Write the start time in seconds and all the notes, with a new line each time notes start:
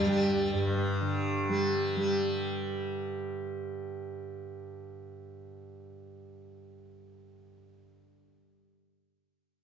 Already playing: G2 D3 G3
0.06 G3
0.53 G2
1.01 D3
1.49 G3
1.97 G3